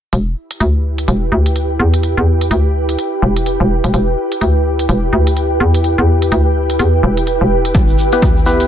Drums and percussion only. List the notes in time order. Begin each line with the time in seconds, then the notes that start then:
0.13 closed hi-hat
0.51 closed hi-hat
0.60 closed hi-hat
0.98 closed hi-hat
1.08 closed hi-hat
1.46 closed hi-hat
1.56 closed hi-hat
1.94 closed hi-hat
2.03 closed hi-hat
2.41 closed hi-hat
2.51 closed hi-hat
2.89 closed hi-hat
2.99 closed hi-hat
3.36 closed hi-hat
3.46 closed hi-hat
3.84 closed hi-hat
3.94 closed hi-hat
4.32 closed hi-hat
4.41 closed hi-hat
4.79 closed hi-hat
4.89 closed hi-hat
5.27 closed hi-hat
5.37 closed hi-hat
5.74 closed hi-hat
5.84 closed hi-hat
6.22 closed hi-hat
6.32 closed hi-hat
6.70 closed hi-hat
6.79 closed hi-hat
7.17 closed hi-hat
7.27 closed hi-hat
7.65 closed hi-hat
7.74 kick, closed hi-hat, shaker
7.88 shaker
7.98 shaker
8.12 closed hi-hat, shaker
8.22 kick, closed hi-hat, shaker
8.37 shaker
8.46 shaker
8.60 closed hi-hat, shaker